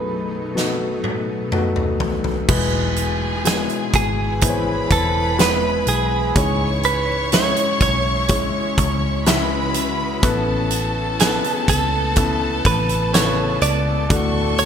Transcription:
0.00 2.45 B1 soft
0.00 2.45 F#2 medium
0.00 2.45 B2 medium
0.00 2.45 F#3 medium
0.00 0.55 A3 medium
0.00 2.45 A3 medium
0.00 0.56 B3 medium
0.00 0.56 D#4 medium
0.00 2.45 D#4 medium
0.00 0.56 F#4 medium
0.00 0.51 G#4 medium
0.00 1.00 B4 medium
0.55 1.47 A3 medium
0.55 1.47 B3 medium
0.55 1.48 D#4 medium
0.55 1.48 F#4 medium
0.55 snare soft
1.04 high tom soft
1.52 2.44 A3 medium
1.52 2.44 B3 medium
1.52 2.44 D#4 medium
1.52 2.44 F#4 medium
1.52 mid tom medium
1.76 mid tom medium
2.00 floor tom medium
2.24 floor tom medium
2.48 3.66 E1 loud
2.48 3.90 B2 medium
2.48 6.32 E3 medium
2.48 3.41 G#3 medium
2.48 3.41 B3 medium
2.48 3.41 E4 medium
2.48 10.19 E4 medium
2.48 3.41 G#4 medium
2.48 4.38 G#4 medium
2.48 3.41 B4 medium
2.48 6.32 B4 medium
2.48 4.39 G#5 medium
2.48 8.26 G#5 medium
2.48 kick loud
2.48 crash medium
2.96 closed hi-hat medium
3.45 4.37 G#3 medium
3.45 4.37 B3 medium
3.45 4.38 E4 medium
3.45 3.52 F#4 medium
3.45 3.60 G#4 medium
3.45 4.38 B4 medium
3.45 snare loud
3.45 closed hi-hat medium
3.52 4.41 G#4 medium
3.69 closed hi-hat soft
3.93 4.87 G#1 medium
3.93 4.88 G#4 medium
3.93 kick medium
3.93 closed hi-hat medium
4.41 5.34 E3 medium
4.41 5.34 B3 medium
4.41 5.34 E4 medium
4.41 5.34 B4 medium
4.41 6.32 B4 medium
4.41 4.49 C5 medium
4.41 6.32 B5 medium
4.41 kick medium
4.41 closed hi-hat medium
4.49 5.38 C#5 medium
4.91 5.84 E1 medium
4.91 5.41 A4 medium
4.91 kick medium
4.91 closed hi-hat medium
5.39 6.31 G#3 medium
5.39 6.31 B3 medium
5.39 6.31 E4 medium
5.39 6.31 G#4 medium
5.39 6.31 B4 medium
5.39 5.88 B4 medium
5.39 snare loud
5.39 closed hi-hat medium
5.87 6.32 B1 medium
5.87 6.85 G#4 medium
5.87 closed hi-hat medium
6.36 7.53 C#2 loud
6.36 7.77 G#2 medium
6.36 14.06 C#3 medium
6.36 7.28 G#3 medium
6.36 10.19 C#4 medium
6.36 7.28 C#4 medium
6.36 7.28 E4 medium
6.36 7.28 G#4 medium
6.36 7.28 C#5 medium
6.36 9.23 C#5 medium
6.36 9.23 C#6 medium
6.36 kick loud
6.36 closed hi-hat medium
6.83 7.30 B4 loud
6.83 closed hi-hat medium
7.32 8.25 G#3 medium
7.32 8.25 C#4 medium
7.32 8.25 E4 medium
7.32 8.25 G#4 medium
7.32 7.81 C#5 medium
7.32 8.25 E5 medium
7.32 snare loud
7.32 closed hi-hat medium
7.56 closed hi-hat medium
7.80 8.50 B1 medium
7.80 9.71 C#5 loud
7.80 kick medium
7.80 closed hi-hat medium
8.28 9.21 G#3 medium
8.28 9.21 C#4 medium
8.28 9.22 E4 medium
8.28 10.21 F#4 medium
8.28 9.21 G#4 medium
8.28 9.22 C#5 medium
8.28 kick medium
8.28 closed hi-hat medium
8.78 10.19 C#2 medium
8.78 kick medium
8.78 closed hi-hat medium
9.26 10.18 G#3 loud
9.26 10.18 C#4 medium
9.26 10.19 E4 medium
9.26 10.19 G#4 medium
9.26 10.22 B4 medium
9.26 10.19 E5 loud
9.26 10.21 B5 medium
9.26 snare loud
9.26 closed hi-hat medium
9.74 closed hi-hat medium
10.22 11.40 A1 loud
10.22 14.06 A3 medium
10.22 11.15 B3 medium
10.22 12.15 B3 medium
10.22 11.15 C#4 medium
10.22 11.15 E4 medium
10.22 14.06 A4 medium
10.22 11.15 A4 medium
10.22 11.15 B4 loud
10.22 14.06 A5 medium
10.22 kick loud
10.22 closed hi-hat medium
10.70 closed hi-hat medium
11.19 12.11 B3 medium
11.19 12.12 C#4 medium
11.19 12.12 E4 medium
11.19 12.12 A4 medium
11.19 11.54 A4 medium
11.19 12.12 B4 medium
11.19 snare loud
11.19 closed hi-hat medium
11.44 closed hi-hat medium
11.54 11.65 G#4 medium
11.68 12.61 C#2 medium
11.68 12.62 A4 medium
11.68 kick medium
11.68 closed hi-hat medium
12.16 13.08 B3 medium
12.16 14.08 B3 medium
12.16 13.08 C#4 medium
12.16 13.08 E4 medium
12.16 13.09 A4 medium
12.16 13.09 B4 medium
12.16 kick medium
12.16 closed hi-hat medium
12.65 13.58 A1 loud
12.65 13.11 B4 medium
12.65 kick medium
12.65 closed hi-hat medium
12.89 closed hi-hat soft
13.13 14.05 C#3 medium
13.13 14.05 B3 medium
13.13 14.05 E4 medium
13.13 14.05 A4 medium
13.13 14.05 B4 medium
13.13 13.62 C#5 medium
13.13 snare loud
13.13 closed hi-hat medium
13.62 14.07 C#2 medium
13.62 14.58 D5 loud
13.62 closed hi-hat medium
14.09 14.65 D2 loud
14.09 14.65 A2 medium
14.09 14.65 F#3 medium
14.09 14.65 A3 medium
14.09 14.65 D4 medium
14.09 14.65 F#4 medium
14.09 14.65 A4 medium
14.09 14.65 F#5 medium
14.09 14.65 C#6 loud
14.09 kick loud
14.09 closed hi-hat medium
14.58 14.65 C#5 loud
14.58 closed hi-hat medium

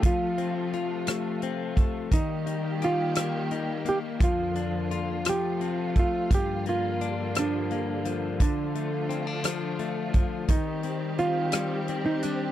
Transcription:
0.00 2.10 C3 medium
0.00 2.07 F3 soft
0.00 2.11 F3 medium
0.00 1.07 A3 soft
0.00 2.07 A3 soft
0.00 0.10 D4 soft
0.00 0.73 F4 soft
0.00 2.07 F4 medium
0.00 kick medium
0.00 closed hi-hat medium
0.06 1.05 F4 medium
0.38 1.42 C4 soft
0.38 closed hi-hat soft
0.73 2.19 F4 soft
0.73 closed hi-hat soft
1.07 1.75 A3 soft
1.07 cross-stick medium
1.07 closed hi-hat medium
1.42 2.19 C4 soft
1.42 closed hi-hat soft
1.77 2.19 A3 soft
1.77 kick medium
1.77 closed hi-hat soft
2.11 4.18 D#3 medium
2.11 4.20 D#3 medium
2.11 4.18 G3 soft
2.11 5.22 A#3 soft
2.11 2.84 D#4 medium
2.11 4.18 G4 medium
2.11 kick medium
2.11 closed hi-hat medium
2.46 3.50 D#4 soft
2.46 closed hi-hat soft
2.82 3.88 F4 medium
2.82 4.28 G4 soft
2.82 closed hi-hat soft
3.15 3.84 A#3 soft
3.15 cross-stick medium
3.15 closed hi-hat medium
3.51 4.28 D#4 soft
3.51 closed hi-hat soft
3.85 4.28 A#3 soft
3.85 3.98 G4 medium
3.85 closed hi-hat soft
4.20 5.25 F2 soft
4.20 5.25 D3 soft
4.20 5.26 F3 medium
4.20 5.25 F3 soft
4.20 8.36 F4 medium
4.20 5.29 F4 medium
4.20 kick medium
4.20 closed hi-hat medium
4.55 5.33 D4 soft
4.55 closed hi-hat soft
4.91 6.35 F4 soft
4.91 closed hi-hat soft
5.25 6.30 C3 medium
5.25 6.30 F3 soft
5.25 7.36 F3 medium
5.25 6.30 A3 soft
5.25 cross-stick medium
5.25 closed hi-hat medium
5.29 5.94 G4 medium
5.61 6.38 C4 soft
5.61 closed hi-hat soft
5.96 6.38 A3 soft
5.96 6.30 F4 medium
5.96 kick medium
5.96 closed hi-hat soft
6.30 8.41 G2 medium
6.30 10.44 D3 soft
6.30 8.38 G3 soft
6.30 8.38 A#3 soft
6.30 kick medium
6.30 closed hi-hat medium
6.34 6.69 G4 medium
6.66 7.71 A#3 soft
6.66 7.39 F4 medium
6.66 closed hi-hat soft
7.01 9.09 D4 soft
7.01 closed hi-hat soft
7.35 8.05 F3 soft
7.35 8.38 D4 medium
7.35 cross-stick medium
7.35 closed hi-hat medium
7.71 8.48 A#3 soft
7.71 closed hi-hat soft
8.05 9.44 F3 soft
8.05 closed hi-hat soft
8.40 10.48 D3 medium
8.40 10.47 F3 medium
8.40 10.47 A3 soft
8.40 9.15 D4 medium
8.40 10.48 F4 medium
8.40 kick medium
8.40 closed hi-hat medium
8.75 9.78 A3 soft
8.75 closed hi-hat soft
9.09 9.27 C4 soft
9.09 closed hi-hat soft
9.27 10.56 D4 soft
9.44 10.13 F3 soft
9.44 cross-stick medium
9.44 closed hi-hat medium
9.79 10.56 A3 soft
9.79 closed hi-hat soft
10.14 10.56 F3 soft
10.14 kick medium
10.14 closed hi-hat soft
10.48 12.52 D#3 medium
10.48 12.52 G3 medium
10.48 12.52 C4 medium
10.48 11.21 D#4 medium
10.48 12.52 G4 medium
10.48 kick medium
10.48 closed hi-hat medium
10.83 11.89 C4 soft
10.83 closed hi-hat soft
11.18 12.02 F4 medium
11.18 closed hi-hat soft
11.52 12.24 G3 soft
11.52 cross-stick medium
11.52 closed hi-hat medium
11.88 12.52 C4 soft
11.88 closed hi-hat soft
12.06 12.23 D#4 medium
12.22 12.52 G3 soft
12.22 12.52 D4 medium
12.22 closed hi-hat soft

